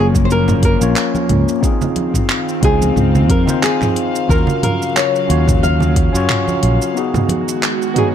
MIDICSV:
0, 0, Header, 1, 6, 480
1, 0, Start_track
1, 0, Tempo, 666667
1, 1173, Time_signature, 4, 2, 24, 8
1, 5867, End_track
2, 0, Start_track
2, 0, Title_t, "Nylon-string guitar"
2, 0, Program_c, 0, 24
2, 181, Note_on_c, 0, 72, 85
2, 220, Note_off_c, 0, 72, 0
2, 229, Note_on_c, 0, 70, 112
2, 445, Note_off_c, 0, 70, 0
2, 466, Note_on_c, 0, 70, 97
2, 911, Note_off_c, 0, 70, 0
2, 1904, Note_on_c, 0, 68, 95
2, 2374, Note_off_c, 0, 68, 0
2, 2377, Note_on_c, 0, 70, 84
2, 2611, Note_off_c, 0, 70, 0
2, 2614, Note_on_c, 0, 68, 90
2, 3094, Note_off_c, 0, 68, 0
2, 3097, Note_on_c, 0, 70, 96
2, 3329, Note_off_c, 0, 70, 0
2, 3338, Note_on_c, 0, 70, 89
2, 3574, Note_off_c, 0, 70, 0
2, 3577, Note_on_c, 0, 73, 106
2, 4052, Note_off_c, 0, 73, 0
2, 4055, Note_on_c, 0, 77, 111
2, 4745, Note_off_c, 0, 77, 0
2, 5747, Note_on_c, 0, 68, 101
2, 5810, Note_off_c, 0, 68, 0
2, 5867, End_track
3, 0, Start_track
3, 0, Title_t, "Tine electric piano"
3, 0, Program_c, 1, 4
3, 0, Control_c, 1, 64, 127
3, 0, Note_on_c, 1, 58, 69
3, 0, Note_on_c, 1, 61, 67
3, 0, Note_on_c, 1, 65, 61
3, 0, Note_on_c, 1, 68, 82
3, 0, Note_on_c, 1, 73, 81
3, 552, Note_off_c, 1, 58, 0
3, 557, Note_off_c, 1, 61, 0
3, 561, Note_off_c, 1, 65, 0
3, 567, Note_off_c, 1, 73, 0
3, 572, Note_on_c, 1, 58, 76
3, 581, Note_on_c, 1, 61, 72
3, 592, Note_on_c, 1, 65, 76
3, 600, Note_on_c, 1, 73, 89
3, 1141, Note_off_c, 1, 58, 0
3, 1145, Note_off_c, 1, 61, 0
3, 1151, Note_off_c, 1, 65, 0
3, 1155, Note_off_c, 1, 73, 0
3, 1159, Note_on_c, 1, 60, 81
3, 1167, Note_on_c, 1, 63, 74
3, 1176, Note_on_c, 1, 65, 64
3, 1183, Control_c, 1, 64, 0
3, 1186, Note_off_c, 1, 68, 0
3, 1187, Note_on_c, 1, 68, 85
3, 1287, Control_c, 1, 64, 127
3, 1860, Note_off_c, 1, 60, 0
3, 1864, Note_off_c, 1, 63, 0
3, 1868, Note_off_c, 1, 65, 0
3, 1874, Note_off_c, 1, 68, 0
3, 1879, Note_on_c, 1, 60, 72
3, 1889, Note_on_c, 1, 63, 64
3, 1901, Note_on_c, 1, 65, 67
3, 1910, Note_on_c, 1, 72, 74
3, 2471, Note_off_c, 1, 60, 0
3, 2476, Note_off_c, 1, 63, 0
3, 2482, Note_off_c, 1, 65, 0
3, 2486, Note_off_c, 1, 72, 0
3, 2490, Note_on_c, 1, 60, 81
3, 2499, Note_on_c, 1, 63, 73
3, 2509, Note_on_c, 1, 65, 76
3, 2519, Note_on_c, 1, 72, 94
3, 3060, Note_off_c, 1, 60, 0
3, 3064, Note_off_c, 1, 63, 0
3, 3069, Note_off_c, 1, 65, 0
3, 3074, Note_off_c, 1, 72, 0
3, 3076, Note_on_c, 1, 61, 76
3, 3087, Note_on_c, 1, 65, 72
3, 3095, Note_on_c, 1, 66, 72
3, 3103, Control_c, 1, 64, 0
3, 3106, Note_on_c, 1, 70, 87
3, 3227, Control_c, 1, 64, 127
3, 3778, Note_off_c, 1, 61, 0
3, 3784, Note_off_c, 1, 65, 0
3, 3788, Note_off_c, 1, 66, 0
3, 3793, Note_off_c, 1, 70, 0
3, 3797, Note_on_c, 1, 61, 72
3, 3808, Note_on_c, 1, 65, 67
3, 3817, Note_on_c, 1, 66, 70
3, 3826, Note_on_c, 1, 73, 80
3, 4389, Note_off_c, 1, 61, 0
3, 4395, Note_off_c, 1, 65, 0
3, 4400, Note_off_c, 1, 66, 0
3, 4404, Note_off_c, 1, 73, 0
3, 4410, Note_on_c, 1, 61, 85
3, 4421, Note_on_c, 1, 65, 76
3, 4431, Note_on_c, 1, 66, 77
3, 4441, Note_on_c, 1, 73, 96
3, 4980, Note_off_c, 1, 61, 0
3, 4986, Note_off_c, 1, 65, 0
3, 4990, Note_off_c, 1, 66, 0
3, 4995, Note_off_c, 1, 73, 0
3, 4998, Note_on_c, 1, 59, 74
3, 5009, Note_on_c, 1, 63, 68
3, 5018, Note_on_c, 1, 66, 71
3, 5023, Control_c, 1, 64, 0
3, 5028, Note_on_c, 1, 68, 83
3, 5126, Control_c, 1, 64, 127
3, 5699, Note_off_c, 1, 59, 0
3, 5705, Note_off_c, 1, 63, 0
3, 5709, Note_off_c, 1, 66, 0
3, 5714, Note_off_c, 1, 68, 0
3, 5718, Note_on_c, 1, 59, 78
3, 5728, Note_on_c, 1, 63, 70
3, 5736, Note_on_c, 1, 66, 66
3, 5747, Note_on_c, 1, 73, 78
3, 5867, Note_off_c, 1, 59, 0
3, 5867, Note_off_c, 1, 63, 0
3, 5867, Note_off_c, 1, 66, 0
3, 5867, Note_off_c, 1, 73, 0
3, 5867, End_track
4, 0, Start_track
4, 0, Title_t, "Analog synth pad"
4, 0, Program_c, 2, 89
4, 0, Note_on_c, 2, 53, 81
4, 0, Note_on_c, 2, 58, 76
4, 1157, Note_off_c, 2, 58, 0
4, 1158, Note_off_c, 2, 53, 0
4, 1167, Note_on_c, 2, 60, 75
4, 1170, Note_on_c, 2, 51, 83
4, 1170, Note_on_c, 2, 77, 92
4, 3071, Note_off_c, 2, 60, 0
4, 3072, Note_off_c, 2, 51, 0
4, 3094, Note_on_c, 2, 49, 78
4, 3096, Note_on_c, 2, 54, 80
4, 4983, Note_off_c, 2, 77, 0
4, 4994, Note_off_c, 2, 49, 0
4, 4995, Note_off_c, 2, 54, 0
4, 5015, Note_on_c, 2, 56, 76
4, 5016, Note_on_c, 2, 51, 80
4, 5017, Note_on_c, 2, 66, 96
4, 5867, Note_off_c, 2, 51, 0
4, 5867, Note_off_c, 2, 56, 0
4, 5867, Note_off_c, 2, 66, 0
4, 5867, End_track
5, 0, Start_track
5, 0, Title_t, "Fretless electric bass"
5, 0, Program_c, 3, 35
5, 0, Note_on_c, 3, 30, 76
5, 542, Note_off_c, 3, 30, 0
5, 587, Note_on_c, 3, 34, 94
5, 672, Note_off_c, 3, 34, 0
5, 933, Note_on_c, 3, 37, 86
5, 1037, Note_off_c, 3, 37, 0
5, 1891, Note_on_c, 3, 37, 77
5, 2087, Note_off_c, 3, 37, 0
5, 2134, Note_on_c, 3, 37, 103
5, 2373, Note_off_c, 3, 37, 0
5, 2373, Note_on_c, 3, 41, 99
5, 2477, Note_off_c, 3, 41, 0
5, 3092, Note_on_c, 3, 39, 100
5, 3196, Note_off_c, 3, 39, 0
5, 3814, Note_on_c, 3, 39, 77
5, 4382, Note_off_c, 3, 39, 0
5, 4423, Note_on_c, 3, 42, 102
5, 4510, Note_off_c, 3, 42, 0
5, 4774, Note_on_c, 3, 34, 84
5, 4877, Note_off_c, 3, 34, 0
5, 5867, End_track
6, 0, Start_track
6, 0, Title_t, "Drums"
6, 105, Note_on_c, 9, 36, 102
6, 106, Note_on_c, 9, 63, 61
6, 109, Note_on_c, 9, 82, 65
6, 177, Note_off_c, 9, 36, 0
6, 178, Note_off_c, 9, 63, 0
6, 181, Note_off_c, 9, 82, 0
6, 220, Note_on_c, 9, 82, 47
6, 292, Note_off_c, 9, 82, 0
6, 344, Note_on_c, 9, 45, 76
6, 345, Note_on_c, 9, 64, 91
6, 351, Note_on_c, 9, 82, 32
6, 416, Note_off_c, 9, 45, 0
6, 417, Note_off_c, 9, 64, 0
6, 423, Note_off_c, 9, 82, 0
6, 452, Note_on_c, 9, 42, 88
6, 453, Note_on_c, 9, 36, 113
6, 524, Note_off_c, 9, 42, 0
6, 525, Note_off_c, 9, 36, 0
6, 587, Note_on_c, 9, 82, 71
6, 659, Note_off_c, 9, 82, 0
6, 692, Note_on_c, 9, 39, 106
6, 698, Note_on_c, 9, 82, 60
6, 764, Note_off_c, 9, 39, 0
6, 770, Note_off_c, 9, 82, 0
6, 826, Note_on_c, 9, 63, 90
6, 830, Note_on_c, 9, 82, 33
6, 898, Note_off_c, 9, 63, 0
6, 902, Note_off_c, 9, 82, 0
6, 931, Note_on_c, 9, 42, 80
6, 931, Note_on_c, 9, 45, 80
6, 1003, Note_off_c, 9, 42, 0
6, 1003, Note_off_c, 9, 45, 0
6, 1069, Note_on_c, 9, 82, 63
6, 1141, Note_off_c, 9, 82, 0
6, 1172, Note_on_c, 9, 36, 110
6, 1178, Note_on_c, 9, 82, 54
6, 1244, Note_off_c, 9, 36, 0
6, 1250, Note_off_c, 9, 82, 0
6, 1306, Note_on_c, 9, 64, 91
6, 1306, Note_on_c, 9, 82, 33
6, 1378, Note_off_c, 9, 64, 0
6, 1378, Note_off_c, 9, 82, 0
6, 1410, Note_on_c, 9, 42, 82
6, 1413, Note_on_c, 9, 63, 78
6, 1482, Note_off_c, 9, 42, 0
6, 1485, Note_off_c, 9, 63, 0
6, 1542, Note_on_c, 9, 36, 59
6, 1542, Note_on_c, 9, 45, 76
6, 1548, Note_on_c, 9, 82, 63
6, 1614, Note_off_c, 9, 36, 0
6, 1614, Note_off_c, 9, 45, 0
6, 1620, Note_off_c, 9, 82, 0
6, 1652, Note_on_c, 9, 39, 102
6, 1659, Note_on_c, 9, 82, 57
6, 1724, Note_off_c, 9, 39, 0
6, 1731, Note_off_c, 9, 82, 0
6, 1791, Note_on_c, 9, 82, 32
6, 1863, Note_off_c, 9, 82, 0
6, 1891, Note_on_c, 9, 36, 100
6, 1892, Note_on_c, 9, 42, 90
6, 1963, Note_off_c, 9, 36, 0
6, 1964, Note_off_c, 9, 42, 0
6, 2029, Note_on_c, 9, 63, 72
6, 2030, Note_on_c, 9, 82, 58
6, 2101, Note_off_c, 9, 63, 0
6, 2102, Note_off_c, 9, 82, 0
6, 2133, Note_on_c, 9, 45, 74
6, 2139, Note_on_c, 9, 82, 46
6, 2205, Note_off_c, 9, 45, 0
6, 2211, Note_off_c, 9, 82, 0
6, 2269, Note_on_c, 9, 64, 84
6, 2269, Note_on_c, 9, 82, 30
6, 2341, Note_off_c, 9, 64, 0
6, 2341, Note_off_c, 9, 82, 0
6, 2371, Note_on_c, 9, 36, 110
6, 2373, Note_on_c, 9, 42, 94
6, 2443, Note_off_c, 9, 36, 0
6, 2445, Note_off_c, 9, 42, 0
6, 2500, Note_on_c, 9, 64, 90
6, 2511, Note_on_c, 9, 82, 67
6, 2572, Note_off_c, 9, 64, 0
6, 2583, Note_off_c, 9, 82, 0
6, 2613, Note_on_c, 9, 39, 97
6, 2620, Note_on_c, 9, 82, 55
6, 2685, Note_off_c, 9, 39, 0
6, 2692, Note_off_c, 9, 82, 0
6, 2745, Note_on_c, 9, 39, 30
6, 2745, Note_on_c, 9, 45, 80
6, 2747, Note_on_c, 9, 63, 90
6, 2752, Note_on_c, 9, 82, 32
6, 2817, Note_off_c, 9, 39, 0
6, 2817, Note_off_c, 9, 45, 0
6, 2819, Note_off_c, 9, 63, 0
6, 2824, Note_off_c, 9, 82, 0
6, 2854, Note_on_c, 9, 42, 86
6, 2926, Note_off_c, 9, 42, 0
6, 2992, Note_on_c, 9, 82, 65
6, 3064, Note_off_c, 9, 82, 0
6, 3092, Note_on_c, 9, 36, 108
6, 3103, Note_on_c, 9, 82, 54
6, 3164, Note_off_c, 9, 36, 0
6, 3175, Note_off_c, 9, 82, 0
6, 3218, Note_on_c, 9, 64, 95
6, 3235, Note_on_c, 9, 82, 33
6, 3290, Note_off_c, 9, 64, 0
6, 3307, Note_off_c, 9, 82, 0
6, 3333, Note_on_c, 9, 63, 74
6, 3336, Note_on_c, 9, 42, 89
6, 3336, Note_on_c, 9, 45, 79
6, 3405, Note_off_c, 9, 63, 0
6, 3408, Note_off_c, 9, 42, 0
6, 3408, Note_off_c, 9, 45, 0
6, 3472, Note_on_c, 9, 82, 61
6, 3544, Note_off_c, 9, 82, 0
6, 3575, Note_on_c, 9, 39, 102
6, 3582, Note_on_c, 9, 82, 58
6, 3647, Note_off_c, 9, 39, 0
6, 3654, Note_off_c, 9, 82, 0
6, 3712, Note_on_c, 9, 82, 32
6, 3784, Note_off_c, 9, 82, 0
6, 3816, Note_on_c, 9, 42, 92
6, 3888, Note_off_c, 9, 42, 0
6, 3943, Note_on_c, 9, 36, 108
6, 3943, Note_on_c, 9, 45, 81
6, 3944, Note_on_c, 9, 63, 69
6, 3950, Note_on_c, 9, 82, 62
6, 4015, Note_off_c, 9, 36, 0
6, 4015, Note_off_c, 9, 45, 0
6, 4016, Note_off_c, 9, 63, 0
6, 4022, Note_off_c, 9, 82, 0
6, 4059, Note_on_c, 9, 82, 46
6, 4131, Note_off_c, 9, 82, 0
6, 4178, Note_on_c, 9, 64, 93
6, 4192, Note_on_c, 9, 82, 31
6, 4250, Note_off_c, 9, 64, 0
6, 4264, Note_off_c, 9, 82, 0
6, 4293, Note_on_c, 9, 36, 110
6, 4293, Note_on_c, 9, 42, 100
6, 4365, Note_off_c, 9, 36, 0
6, 4365, Note_off_c, 9, 42, 0
6, 4429, Note_on_c, 9, 82, 67
6, 4501, Note_off_c, 9, 82, 0
6, 4532, Note_on_c, 9, 39, 105
6, 4532, Note_on_c, 9, 45, 90
6, 4538, Note_on_c, 9, 82, 57
6, 4604, Note_off_c, 9, 39, 0
6, 4604, Note_off_c, 9, 45, 0
6, 4610, Note_off_c, 9, 82, 0
6, 4663, Note_on_c, 9, 63, 80
6, 4669, Note_on_c, 9, 82, 31
6, 4735, Note_off_c, 9, 63, 0
6, 4741, Note_off_c, 9, 82, 0
6, 4772, Note_on_c, 9, 42, 95
6, 4844, Note_off_c, 9, 42, 0
6, 4908, Note_on_c, 9, 82, 61
6, 4980, Note_off_c, 9, 82, 0
6, 5018, Note_on_c, 9, 82, 56
6, 5090, Note_off_c, 9, 82, 0
6, 5143, Note_on_c, 9, 45, 87
6, 5143, Note_on_c, 9, 64, 99
6, 5150, Note_on_c, 9, 82, 34
6, 5215, Note_off_c, 9, 45, 0
6, 5215, Note_off_c, 9, 64, 0
6, 5222, Note_off_c, 9, 82, 0
6, 5247, Note_on_c, 9, 63, 92
6, 5252, Note_on_c, 9, 42, 90
6, 5319, Note_off_c, 9, 63, 0
6, 5324, Note_off_c, 9, 42, 0
6, 5388, Note_on_c, 9, 82, 67
6, 5460, Note_off_c, 9, 82, 0
6, 5493, Note_on_c, 9, 39, 109
6, 5500, Note_on_c, 9, 82, 58
6, 5565, Note_off_c, 9, 39, 0
6, 5572, Note_off_c, 9, 82, 0
6, 5631, Note_on_c, 9, 82, 32
6, 5703, Note_off_c, 9, 82, 0
6, 5732, Note_on_c, 9, 42, 92
6, 5732, Note_on_c, 9, 45, 80
6, 5804, Note_off_c, 9, 42, 0
6, 5804, Note_off_c, 9, 45, 0
6, 5867, End_track
0, 0, End_of_file